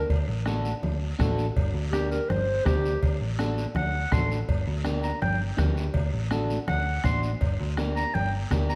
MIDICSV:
0, 0, Header, 1, 6, 480
1, 0, Start_track
1, 0, Key_signature, -2, "minor"
1, 0, Tempo, 365186
1, 141, Time_signature, 4, 2, 24, 8
1, 11502, End_track
2, 0, Start_track
2, 0, Title_t, "Clarinet"
2, 0, Program_c, 0, 71
2, 2526, Note_on_c, 0, 67, 95
2, 2768, Note_off_c, 0, 67, 0
2, 2778, Note_on_c, 0, 70, 80
2, 3009, Note_on_c, 0, 72, 87
2, 3028, Note_off_c, 0, 70, 0
2, 3488, Note_on_c, 0, 67, 103
2, 3507, Note_off_c, 0, 72, 0
2, 3961, Note_off_c, 0, 67, 0
2, 4940, Note_on_c, 0, 78, 89
2, 5425, Note_on_c, 0, 84, 79
2, 5444, Note_off_c, 0, 78, 0
2, 5657, Note_off_c, 0, 84, 0
2, 6621, Note_on_c, 0, 82, 75
2, 6850, Note_off_c, 0, 82, 0
2, 6858, Note_on_c, 0, 79, 84
2, 7093, Note_off_c, 0, 79, 0
2, 8780, Note_on_c, 0, 78, 90
2, 9246, Note_off_c, 0, 78, 0
2, 9265, Note_on_c, 0, 84, 88
2, 9496, Note_off_c, 0, 84, 0
2, 10461, Note_on_c, 0, 82, 89
2, 10702, Note_on_c, 0, 79, 93
2, 10721, Note_off_c, 0, 82, 0
2, 10934, Note_off_c, 0, 79, 0
2, 11428, Note_on_c, 0, 82, 95
2, 11502, Note_off_c, 0, 82, 0
2, 11502, End_track
3, 0, Start_track
3, 0, Title_t, "Clean electric guitar"
3, 0, Program_c, 1, 27
3, 601, Note_on_c, 1, 62, 92
3, 610, Note_on_c, 1, 66, 68
3, 616, Note_on_c, 1, 69, 93
3, 948, Note_off_c, 1, 62, 0
3, 950, Note_off_c, 1, 66, 0
3, 955, Note_off_c, 1, 69, 0
3, 1560, Note_on_c, 1, 62, 82
3, 1566, Note_on_c, 1, 66, 80
3, 1573, Note_on_c, 1, 69, 93
3, 1908, Note_off_c, 1, 62, 0
3, 1911, Note_off_c, 1, 66, 0
3, 1914, Note_off_c, 1, 69, 0
3, 2539, Note_on_c, 1, 62, 73
3, 2544, Note_on_c, 1, 67, 73
3, 2555, Note_on_c, 1, 70, 74
3, 2877, Note_off_c, 1, 62, 0
3, 2881, Note_off_c, 1, 67, 0
3, 2882, Note_off_c, 1, 70, 0
3, 3487, Note_on_c, 1, 62, 73
3, 3497, Note_on_c, 1, 67, 61
3, 3501, Note_on_c, 1, 70, 80
3, 3833, Note_off_c, 1, 62, 0
3, 3834, Note_off_c, 1, 67, 0
3, 3838, Note_off_c, 1, 70, 0
3, 4456, Note_on_c, 1, 62, 89
3, 4464, Note_on_c, 1, 66, 66
3, 4465, Note_on_c, 1, 69, 96
3, 4797, Note_off_c, 1, 62, 0
3, 4798, Note_off_c, 1, 66, 0
3, 4800, Note_off_c, 1, 69, 0
3, 5418, Note_on_c, 1, 62, 65
3, 5427, Note_on_c, 1, 66, 53
3, 5427, Note_on_c, 1, 69, 77
3, 5758, Note_off_c, 1, 62, 0
3, 5759, Note_off_c, 1, 66, 0
3, 5762, Note_off_c, 1, 69, 0
3, 6364, Note_on_c, 1, 62, 88
3, 6372, Note_on_c, 1, 67, 74
3, 6380, Note_on_c, 1, 70, 89
3, 6710, Note_off_c, 1, 62, 0
3, 6714, Note_off_c, 1, 67, 0
3, 6716, Note_off_c, 1, 70, 0
3, 7321, Note_on_c, 1, 62, 82
3, 7331, Note_on_c, 1, 67, 82
3, 7339, Note_on_c, 1, 70, 92
3, 7668, Note_off_c, 1, 62, 0
3, 7673, Note_off_c, 1, 67, 0
3, 7675, Note_off_c, 1, 70, 0
3, 8296, Note_on_c, 1, 62, 90
3, 8302, Note_on_c, 1, 66, 77
3, 8308, Note_on_c, 1, 69, 93
3, 8635, Note_off_c, 1, 62, 0
3, 8638, Note_off_c, 1, 66, 0
3, 8641, Note_off_c, 1, 69, 0
3, 9257, Note_on_c, 1, 62, 73
3, 9264, Note_on_c, 1, 66, 65
3, 9269, Note_on_c, 1, 72, 78
3, 9595, Note_off_c, 1, 62, 0
3, 9599, Note_off_c, 1, 66, 0
3, 9601, Note_off_c, 1, 72, 0
3, 10219, Note_on_c, 1, 62, 92
3, 10225, Note_on_c, 1, 67, 84
3, 10232, Note_on_c, 1, 70, 103
3, 10556, Note_off_c, 1, 62, 0
3, 10559, Note_off_c, 1, 67, 0
3, 10563, Note_off_c, 1, 70, 0
3, 11192, Note_on_c, 1, 62, 88
3, 11201, Note_on_c, 1, 67, 81
3, 11208, Note_on_c, 1, 70, 95
3, 11502, Note_off_c, 1, 62, 0
3, 11502, Note_off_c, 1, 67, 0
3, 11502, Note_off_c, 1, 70, 0
3, 11502, End_track
4, 0, Start_track
4, 0, Title_t, "Picked electric bass"
4, 0, Program_c, 2, 34
4, 128, Note_on_c, 2, 38, 86
4, 325, Note_off_c, 2, 38, 0
4, 373, Note_on_c, 2, 33, 90
4, 953, Note_off_c, 2, 33, 0
4, 1091, Note_on_c, 2, 38, 88
4, 1480, Note_off_c, 2, 38, 0
4, 1573, Note_on_c, 2, 33, 100
4, 1961, Note_off_c, 2, 33, 0
4, 2055, Note_on_c, 2, 31, 95
4, 2251, Note_off_c, 2, 31, 0
4, 2287, Note_on_c, 2, 38, 96
4, 2870, Note_off_c, 2, 38, 0
4, 3021, Note_on_c, 2, 31, 89
4, 3407, Note_off_c, 2, 31, 0
4, 3499, Note_on_c, 2, 38, 100
4, 3885, Note_off_c, 2, 38, 0
4, 3984, Note_on_c, 2, 38, 94
4, 4176, Note_off_c, 2, 38, 0
4, 4216, Note_on_c, 2, 33, 92
4, 4795, Note_off_c, 2, 33, 0
4, 4931, Note_on_c, 2, 38, 97
4, 5320, Note_off_c, 2, 38, 0
4, 5416, Note_on_c, 2, 33, 96
4, 5803, Note_off_c, 2, 33, 0
4, 5894, Note_on_c, 2, 31, 85
4, 6090, Note_off_c, 2, 31, 0
4, 6144, Note_on_c, 2, 38, 97
4, 6720, Note_off_c, 2, 38, 0
4, 6862, Note_on_c, 2, 31, 91
4, 7246, Note_off_c, 2, 31, 0
4, 7339, Note_on_c, 2, 38, 103
4, 7724, Note_off_c, 2, 38, 0
4, 7809, Note_on_c, 2, 38, 94
4, 8007, Note_off_c, 2, 38, 0
4, 8062, Note_on_c, 2, 33, 97
4, 8638, Note_off_c, 2, 33, 0
4, 8790, Note_on_c, 2, 38, 97
4, 9171, Note_off_c, 2, 38, 0
4, 9259, Note_on_c, 2, 33, 102
4, 9644, Note_off_c, 2, 33, 0
4, 9738, Note_on_c, 2, 31, 94
4, 9931, Note_off_c, 2, 31, 0
4, 9995, Note_on_c, 2, 38, 100
4, 10565, Note_off_c, 2, 38, 0
4, 10717, Note_on_c, 2, 31, 89
4, 11095, Note_off_c, 2, 31, 0
4, 11186, Note_on_c, 2, 38, 98
4, 11502, Note_off_c, 2, 38, 0
4, 11502, End_track
5, 0, Start_track
5, 0, Title_t, "Two-headed folk drums"
5, 127, Note_on_c, 9, 36, 84
5, 258, Note_off_c, 9, 36, 0
5, 601, Note_on_c, 9, 37, 84
5, 732, Note_off_c, 9, 37, 0
5, 1575, Note_on_c, 9, 36, 87
5, 1576, Note_on_c, 9, 37, 82
5, 1706, Note_off_c, 9, 36, 0
5, 1707, Note_off_c, 9, 37, 0
5, 2057, Note_on_c, 9, 36, 84
5, 2188, Note_off_c, 9, 36, 0
5, 2538, Note_on_c, 9, 37, 82
5, 2669, Note_off_c, 9, 37, 0
5, 3023, Note_on_c, 9, 37, 72
5, 3155, Note_off_c, 9, 37, 0
5, 3498, Note_on_c, 9, 36, 87
5, 3498, Note_on_c, 9, 37, 83
5, 3630, Note_off_c, 9, 36, 0
5, 3630, Note_off_c, 9, 37, 0
5, 3979, Note_on_c, 9, 36, 80
5, 4111, Note_off_c, 9, 36, 0
5, 4455, Note_on_c, 9, 37, 84
5, 4586, Note_off_c, 9, 37, 0
5, 4939, Note_on_c, 9, 37, 69
5, 5070, Note_off_c, 9, 37, 0
5, 5413, Note_on_c, 9, 37, 82
5, 5417, Note_on_c, 9, 36, 83
5, 5545, Note_off_c, 9, 37, 0
5, 5548, Note_off_c, 9, 36, 0
5, 5896, Note_on_c, 9, 36, 81
5, 6027, Note_off_c, 9, 36, 0
5, 6369, Note_on_c, 9, 37, 84
5, 6501, Note_off_c, 9, 37, 0
5, 6863, Note_on_c, 9, 37, 72
5, 6994, Note_off_c, 9, 37, 0
5, 7338, Note_on_c, 9, 36, 82
5, 7342, Note_on_c, 9, 37, 86
5, 7469, Note_off_c, 9, 36, 0
5, 7473, Note_off_c, 9, 37, 0
5, 7815, Note_on_c, 9, 36, 84
5, 7947, Note_off_c, 9, 36, 0
5, 8290, Note_on_c, 9, 37, 92
5, 8422, Note_off_c, 9, 37, 0
5, 8778, Note_on_c, 9, 37, 75
5, 8910, Note_off_c, 9, 37, 0
5, 9250, Note_on_c, 9, 37, 88
5, 9258, Note_on_c, 9, 36, 83
5, 9382, Note_off_c, 9, 37, 0
5, 9389, Note_off_c, 9, 36, 0
5, 9742, Note_on_c, 9, 36, 77
5, 9874, Note_off_c, 9, 36, 0
5, 10217, Note_on_c, 9, 37, 87
5, 10349, Note_off_c, 9, 37, 0
5, 11188, Note_on_c, 9, 37, 86
5, 11189, Note_on_c, 9, 36, 84
5, 11320, Note_off_c, 9, 36, 0
5, 11320, Note_off_c, 9, 37, 0
5, 11502, End_track
6, 0, Start_track
6, 0, Title_t, "Drums"
6, 133, Note_on_c, 9, 56, 105
6, 133, Note_on_c, 9, 63, 34
6, 135, Note_on_c, 9, 74, 69
6, 264, Note_off_c, 9, 56, 0
6, 264, Note_off_c, 9, 63, 0
6, 266, Note_off_c, 9, 74, 0
6, 614, Note_on_c, 9, 63, 82
6, 617, Note_on_c, 9, 73, 66
6, 746, Note_off_c, 9, 63, 0
6, 749, Note_off_c, 9, 73, 0
6, 858, Note_on_c, 9, 73, 72
6, 989, Note_off_c, 9, 73, 0
6, 1091, Note_on_c, 9, 56, 81
6, 1093, Note_on_c, 9, 63, 34
6, 1093, Note_on_c, 9, 64, 80
6, 1099, Note_on_c, 9, 74, 69
6, 1223, Note_off_c, 9, 56, 0
6, 1225, Note_off_c, 9, 63, 0
6, 1225, Note_off_c, 9, 64, 0
6, 1231, Note_off_c, 9, 74, 0
6, 1572, Note_on_c, 9, 63, 80
6, 1572, Note_on_c, 9, 64, 72
6, 1583, Note_on_c, 9, 66, 68
6, 1586, Note_on_c, 9, 73, 69
6, 1703, Note_off_c, 9, 63, 0
6, 1703, Note_off_c, 9, 64, 0
6, 1714, Note_off_c, 9, 66, 0
6, 1717, Note_off_c, 9, 73, 0
6, 1820, Note_on_c, 9, 73, 64
6, 1952, Note_off_c, 9, 73, 0
6, 2057, Note_on_c, 9, 56, 105
6, 2058, Note_on_c, 9, 63, 32
6, 2070, Note_on_c, 9, 74, 76
6, 2189, Note_off_c, 9, 56, 0
6, 2189, Note_off_c, 9, 63, 0
6, 2201, Note_off_c, 9, 74, 0
6, 2537, Note_on_c, 9, 63, 89
6, 2548, Note_on_c, 9, 73, 72
6, 2668, Note_off_c, 9, 63, 0
6, 2679, Note_off_c, 9, 73, 0
6, 2783, Note_on_c, 9, 73, 70
6, 2915, Note_off_c, 9, 73, 0
6, 3024, Note_on_c, 9, 63, 35
6, 3024, Note_on_c, 9, 64, 79
6, 3025, Note_on_c, 9, 74, 69
6, 3038, Note_on_c, 9, 56, 77
6, 3155, Note_off_c, 9, 63, 0
6, 3155, Note_off_c, 9, 64, 0
6, 3157, Note_off_c, 9, 74, 0
6, 3169, Note_off_c, 9, 56, 0
6, 3499, Note_on_c, 9, 66, 69
6, 3501, Note_on_c, 9, 63, 80
6, 3501, Note_on_c, 9, 64, 72
6, 3509, Note_on_c, 9, 73, 69
6, 3631, Note_off_c, 9, 66, 0
6, 3632, Note_off_c, 9, 63, 0
6, 3632, Note_off_c, 9, 64, 0
6, 3641, Note_off_c, 9, 73, 0
6, 3754, Note_on_c, 9, 73, 68
6, 3885, Note_off_c, 9, 73, 0
6, 3977, Note_on_c, 9, 56, 113
6, 3981, Note_on_c, 9, 63, 34
6, 3993, Note_on_c, 9, 74, 76
6, 4108, Note_off_c, 9, 56, 0
6, 4113, Note_off_c, 9, 63, 0
6, 4124, Note_off_c, 9, 74, 0
6, 4461, Note_on_c, 9, 63, 88
6, 4467, Note_on_c, 9, 73, 66
6, 4593, Note_off_c, 9, 63, 0
6, 4598, Note_off_c, 9, 73, 0
6, 4708, Note_on_c, 9, 73, 74
6, 4839, Note_off_c, 9, 73, 0
6, 4926, Note_on_c, 9, 63, 33
6, 4926, Note_on_c, 9, 64, 86
6, 4943, Note_on_c, 9, 56, 83
6, 4953, Note_on_c, 9, 74, 70
6, 5058, Note_off_c, 9, 63, 0
6, 5058, Note_off_c, 9, 64, 0
6, 5074, Note_off_c, 9, 56, 0
6, 5085, Note_off_c, 9, 74, 0
6, 5417, Note_on_c, 9, 66, 71
6, 5420, Note_on_c, 9, 63, 79
6, 5420, Note_on_c, 9, 64, 73
6, 5431, Note_on_c, 9, 73, 75
6, 5548, Note_off_c, 9, 66, 0
6, 5551, Note_off_c, 9, 63, 0
6, 5551, Note_off_c, 9, 64, 0
6, 5562, Note_off_c, 9, 73, 0
6, 5674, Note_on_c, 9, 73, 72
6, 5805, Note_off_c, 9, 73, 0
6, 5898, Note_on_c, 9, 56, 108
6, 5907, Note_on_c, 9, 63, 33
6, 5911, Note_on_c, 9, 74, 74
6, 6029, Note_off_c, 9, 56, 0
6, 6038, Note_off_c, 9, 63, 0
6, 6042, Note_off_c, 9, 74, 0
6, 6379, Note_on_c, 9, 73, 66
6, 6390, Note_on_c, 9, 63, 85
6, 6510, Note_off_c, 9, 73, 0
6, 6522, Note_off_c, 9, 63, 0
6, 6617, Note_on_c, 9, 73, 73
6, 6748, Note_off_c, 9, 73, 0
6, 6856, Note_on_c, 9, 56, 84
6, 6863, Note_on_c, 9, 74, 67
6, 6865, Note_on_c, 9, 63, 34
6, 6865, Note_on_c, 9, 64, 81
6, 6987, Note_off_c, 9, 56, 0
6, 6995, Note_off_c, 9, 74, 0
6, 6997, Note_off_c, 9, 63, 0
6, 6997, Note_off_c, 9, 64, 0
6, 7337, Note_on_c, 9, 66, 67
6, 7338, Note_on_c, 9, 73, 70
6, 7345, Note_on_c, 9, 63, 81
6, 7345, Note_on_c, 9, 64, 76
6, 7468, Note_off_c, 9, 66, 0
6, 7469, Note_off_c, 9, 73, 0
6, 7477, Note_off_c, 9, 63, 0
6, 7477, Note_off_c, 9, 64, 0
6, 7588, Note_on_c, 9, 73, 67
6, 7720, Note_off_c, 9, 73, 0
6, 7806, Note_on_c, 9, 56, 107
6, 7824, Note_on_c, 9, 63, 34
6, 7824, Note_on_c, 9, 74, 72
6, 7937, Note_off_c, 9, 56, 0
6, 7955, Note_off_c, 9, 63, 0
6, 7955, Note_off_c, 9, 74, 0
6, 8296, Note_on_c, 9, 63, 82
6, 8300, Note_on_c, 9, 73, 69
6, 8427, Note_off_c, 9, 63, 0
6, 8431, Note_off_c, 9, 73, 0
6, 8548, Note_on_c, 9, 73, 75
6, 8680, Note_off_c, 9, 73, 0
6, 8777, Note_on_c, 9, 63, 36
6, 8777, Note_on_c, 9, 64, 77
6, 8779, Note_on_c, 9, 56, 86
6, 8799, Note_on_c, 9, 74, 71
6, 8908, Note_off_c, 9, 63, 0
6, 8908, Note_off_c, 9, 64, 0
6, 8911, Note_off_c, 9, 56, 0
6, 8930, Note_off_c, 9, 74, 0
6, 9253, Note_on_c, 9, 63, 88
6, 9268, Note_on_c, 9, 73, 72
6, 9385, Note_off_c, 9, 63, 0
6, 9399, Note_off_c, 9, 73, 0
6, 9507, Note_on_c, 9, 73, 65
6, 9638, Note_off_c, 9, 73, 0
6, 9739, Note_on_c, 9, 56, 105
6, 9743, Note_on_c, 9, 63, 35
6, 9752, Note_on_c, 9, 74, 73
6, 9870, Note_off_c, 9, 56, 0
6, 9874, Note_off_c, 9, 63, 0
6, 9883, Note_off_c, 9, 74, 0
6, 10222, Note_on_c, 9, 63, 87
6, 10230, Note_on_c, 9, 73, 67
6, 10354, Note_off_c, 9, 63, 0
6, 10362, Note_off_c, 9, 73, 0
6, 10473, Note_on_c, 9, 73, 72
6, 10605, Note_off_c, 9, 73, 0
6, 10698, Note_on_c, 9, 56, 84
6, 10711, Note_on_c, 9, 63, 34
6, 10711, Note_on_c, 9, 64, 77
6, 10718, Note_on_c, 9, 74, 74
6, 10830, Note_off_c, 9, 56, 0
6, 10843, Note_off_c, 9, 63, 0
6, 10843, Note_off_c, 9, 64, 0
6, 10849, Note_off_c, 9, 74, 0
6, 11183, Note_on_c, 9, 63, 86
6, 11187, Note_on_c, 9, 66, 70
6, 11193, Note_on_c, 9, 73, 74
6, 11314, Note_off_c, 9, 63, 0
6, 11318, Note_off_c, 9, 66, 0
6, 11325, Note_off_c, 9, 73, 0
6, 11429, Note_on_c, 9, 73, 66
6, 11502, Note_off_c, 9, 73, 0
6, 11502, End_track
0, 0, End_of_file